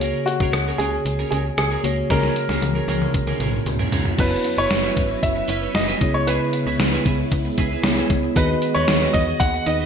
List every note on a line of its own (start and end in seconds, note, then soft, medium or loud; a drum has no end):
0.00 0.13 C#2 medium
0.00 0.50 C#3 medium
0.00 1.80 A#3 medium
0.00 0.26 C#4 medium
0.00 1.80 F#4 medium
0.00 1.80 G#4 medium
0.00 0.26 G#4 medium
0.00 0.27 A#4 medium
0.00 1.81 C#5 medium
0.00 closed hi-hat medium
0.26 0.81 F#4 medium
0.26 muted clean electric guitar stroke soft
0.26 closed hi-hat medium
0.40 0.50 C#2 medium
0.40 0.53 C#4 soft
0.40 0.54 G#4 medium
0.40 0.54 A#4 medium
0.40 kick medium
0.53 0.72 C#2 medium
0.53 muted clean electric guitar stroke soft
0.53 cross-stick loud
0.53 closed hi-hat medium
0.68 0.79 C#4 soft
0.68 0.80 G#4 soft
0.68 0.81 A#4 medium
0.78 0.98 C#2 loud
0.78 1.01 C#4 medium
0.78 1.29 G#4 medium
0.78 0.93 G#4 medium
0.78 0.92 A#4 medium
0.78 closed hi-hat medium
0.93 muted clean electric guitar stroke soft
1.05 1.24 C#2 medium
1.05 muted clean electric guitar stroke soft
1.05 closed hi-hat medium
1.19 1.31 C#4 medium
1.19 1.32 G#4 medium
1.19 1.33 A#4 medium
1.31 1.51 C#2 medium
1.31 1.49 C#4 medium
1.31 1.37 G#4 medium
1.31 1.45 G#4 medium
1.31 1.44 A#4 medium
1.31 closed hi-hat medium
1.45 muted clean electric guitar stroke soft
1.58 1.77 C#2 loud
1.58 2.06 G#4 medium
1.58 muted clean electric guitar stroke soft
1.58 cross-stick medium
1.58 closed hi-hat medium
1.71 1.83 C#4 soft
1.71 1.84 G#4 medium
1.71 1.84 A#4 medium
1.83 2.03 C#2 loud
1.83 2.59 C#3 medium
1.83 3.88 A#3 medium
1.83 2.05 C#4 medium
1.83 3.89 F#4 medium
1.83 3.89 G#4 medium
1.83 1.98 G#4 medium
1.83 1.97 A#4 medium
1.83 3.89 C#5 medium
1.83 closed hi-hat medium
1.98 muted clean electric guitar stroke soft
2.10 2.29 C#2 loud
2.10 2.34 C#4 medium
2.10 2.35 G#4 medium
2.10 3.63 A#4 medium
2.10 2.35 A#4 medium
2.10 kick medium
2.10 snare soft
2.10 closed hi-hat medium
2.23 snare soft
2.36 muted clean electric guitar stroke soft
2.36 closed hi-hat medium
2.49 2.59 C#2 medium
2.49 2.62 C#4 soft
2.49 2.62 G#4 medium
2.49 2.63 A#4 medium
2.49 snare soft
2.62 2.81 C#2 medium
2.62 muted clean electric guitar stroke soft
2.62 closed hi-hat medium
2.62 high tom medium
2.75 2.87 C#4 soft
2.75 2.88 G#4 medium
2.75 2.89 A#4 medium
2.88 3.07 C#2 loud
2.88 3.09 C#4 medium
2.88 3.01 G#4 medium
2.88 3.00 A#4 medium
2.88 closed hi-hat medium
2.88 high tom medium
3.02 muted clean electric guitar stroke soft
3.02 mid tom medium
3.14 3.33 C#2 loud
3.14 muted clean electric guitar stroke soft
3.14 kick medium
3.14 closed hi-hat medium
3.27 3.40 C#4 medium
3.27 3.41 G#4 medium
3.27 3.41 A#4 medium
3.27 mid tom medium
3.40 3.59 B1 medium
3.40 3.57 C#4 medium
3.40 3.53 G#4 medium
3.40 3.52 A#4 medium
3.40 closed hi-hat medium
3.40 mid tom medium
3.54 muted clean electric guitar stroke soft
3.66 3.85 C#2 loud
3.66 muted clean electric guitar stroke soft
3.66 closed hi-hat medium
3.66 mid tom medium
3.79 3.91 C#4 medium
3.79 3.92 G#4 medium
3.79 3.92 A#4 medium
3.79 floor tom medium
3.92 4.12 C#2 medium
3.92 4.13 C#4 medium
3.92 4.06 G#4 medium
3.92 4.05 A#4 medium
3.92 closed hi-hat medium
3.92 floor tom medium
4.05 muted clean electric guitar stroke soft
4.05 floor tom medium
4.17 4.37 F#1 loud
4.17 5.99 F#3 medium
4.17 5.97 B3 medium
4.17 5.99 C#4 medium
4.17 4.40 C#4 medium
4.17 5.99 E4 medium
4.17 5.98 E4 medium
4.17 4.32 E4 medium
4.17 5.98 F#4 medium
4.17 5.99 B4 medium
4.17 4.60 B4 medium
4.17 4.30 B4 medium
4.17 5.98 C#5 medium
4.17 kick loud
4.17 closed hi-hat medium
4.17 crash medium
4.31 muted clean electric guitar stroke soft
4.44 muted clean electric guitar stroke soft
4.44 closed hi-hat medium
4.58 4.67 F#1 medium
4.58 4.70 C#4 soft
4.58 4.71 E4 medium
4.58 4.71 B4 medium
4.58 5.25 C#5 loud
4.71 4.90 F#1 loud
4.71 muted clean electric guitar stroke soft
4.71 snare loud
4.71 closed hi-hat medium
4.84 4.95 C#4 medium
4.84 4.96 E4 medium
4.84 4.97 B4 medium
4.96 5.16 G#1 medium
4.96 5.13 C#4 medium
4.96 5.09 E4 medium
4.96 5.08 B4 medium
4.96 kick medium
4.96 closed hi-hat medium
5.10 muted clean electric guitar stroke soft
5.23 5.42 F#1 loud
5.23 5.77 E5 medium
5.23 muted clean electric guitar stroke soft
5.23 kick medium
5.23 closed hi-hat medium
5.36 muted clean electric guitar stroke soft
5.48 5.68 F#1 medium
5.48 5.62 C#4 medium
5.48 5.61 E4 medium
5.48 5.60 B4 medium
5.48 closed hi-hat medium
5.62 5.73 C#4 medium
5.62 5.74 E4 medium
5.62 5.74 B4 medium
5.74 5.94 F#1 loud
5.74 6.15 D#5 medium
5.74 muted clean electric guitar stroke soft
5.74 snare loud
5.74 closed hi-hat medium
5.88 6.00 C#4 medium
5.88 5.99 E4 medium
5.88 6.01 B4 medium
6.00 6.39 C#2 loud
6.00 8.34 C#3 medium
6.00 6.76 C#3 medium
6.00 9.86 G#3 medium
6.00 9.86 B3 medium
6.00 7.80 B3 medium
6.00 8.33 E4 medium
6.00 7.81 E4 medium
6.00 7.81 G#4 medium
6.00 7.81 C#5 medium
6.00 muted clean electric guitar stroke soft
6.00 kick loud
6.00 closed hi-hat medium
6.14 6.28 C#5 medium
6.14 muted clean electric guitar stroke soft
6.27 6.48 E4 medium
6.27 6.41 G#4 medium
6.27 6.76 B4 medium
6.27 6.40 B4 medium
6.27 closed hi-hat medium
6.41 muted clean electric guitar stroke soft
6.53 muted clean electric guitar stroke soft
6.53 closed hi-hat medium
6.66 6.76 C#2 loud
6.66 6.79 E4 soft
6.66 6.79 G#4 medium
6.66 6.79 B4 medium
6.79 6.98 C#2 medium
6.79 muted clean electric guitar stroke soft
6.79 snare loud
6.79 closed hi-hat medium
6.93 7.05 E4 medium
6.93 7.06 G#4 medium
6.93 7.06 B4 medium
7.06 7.25 C#2 medium
7.06 7.22 E4 medium
7.06 7.19 G#4 medium
7.06 7.18 B4 medium
7.06 kick medium
7.06 closed hi-hat medium
7.19 muted clean electric guitar stroke soft
7.32 7.50 C#2 loud
7.32 muted clean electric guitar stroke soft
7.32 kick medium
7.32 closed hi-hat medium
7.45 muted clean electric guitar stroke soft
7.58 7.77 C#2 loud
7.58 7.72 E4 medium
7.58 7.71 G#4 medium
7.58 7.70 B4 medium
7.58 kick medium
7.58 closed hi-hat medium
7.71 7.83 E4 medium
7.71 7.84 G#4 medium
7.71 7.84 B4 medium
7.83 8.02 C#2 loud
7.83 8.34 B3 medium
7.83 8.36 E4 medium
7.83 8.35 G#4 medium
7.83 8.36 C#5 medium
7.83 muted clean electric guitar stroke soft
7.83 snare loud
7.83 closed hi-hat medium
7.98 8.10 E4 medium
7.98 8.10 G#4 medium
7.98 8.10 B4 medium
8.10 8.29 C#2 medium
8.10 muted clean electric guitar stroke soft
8.10 kick medium
8.10 closed hi-hat medium
8.23 muted clean electric guitar stroke soft
8.35 8.55 D#2 loud
8.35 9.10 D#3 medium
8.35 9.86 B3 medium
8.35 8.57 D#4 medium
8.35 9.86 F#4 medium
8.35 8.50 F#4 medium
8.35 9.86 F#4 medium
8.35 9.86 G#4 medium
8.35 8.77 B4 medium
8.35 8.48 B4 medium
8.35 9.86 D#5 medium
8.35 kick loud
8.35 closed hi-hat medium
8.50 muted clean electric guitar stroke soft
8.62 muted clean electric guitar stroke soft
8.62 closed hi-hat medium
8.75 8.85 D#2 medium
8.75 8.87 D#4 medium
8.75 8.88 F#4 medium
8.75 8.88 B4 medium
8.75 9.11 C#5 medium
8.88 9.07 D#2 loud
8.88 snare loud
8.88 closed hi-hat medium
9.01 9.13 D#4 medium
9.01 9.14 F#4 medium
9.01 9.14 B4 medium
9.13 9.33 E2 medium
9.13 9.31 D#4 medium
9.13 9.27 F#4 medium
9.13 9.26 B4 medium
9.13 9.38 D#5 loud
9.13 kick medium
9.13 closed hi-hat medium
9.27 muted clean electric guitar stroke soft
9.40 9.59 D#2 loud
9.40 9.64 F#5 loud
9.40 muted clean electric guitar stroke soft
9.40 kick medium
9.40 closed hi-hat medium
9.54 muted clean electric guitar stroke soft
9.66 9.86 D#2 medium
9.66 9.80 D#4 medium
9.66 9.80 F#4 medium
9.66 9.79 B4 medium
9.66 9.86 D#5 medium
9.66 closed hi-hat medium
9.80 9.86 D#4 medium
9.80 9.86 F#4 medium
9.80 9.86 B4 medium